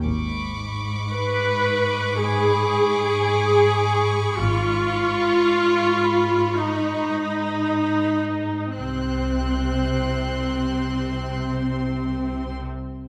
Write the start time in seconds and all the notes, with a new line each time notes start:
0.03 G#1 G#2 B5 C#6 D6
1.12 B4
2.22 G#4 B4 B5
4.40 G#1 G#2 F4
4.51 C#6
6.04 B5
6.57 D#4
8.77 C2 C3 C4 C6 F#6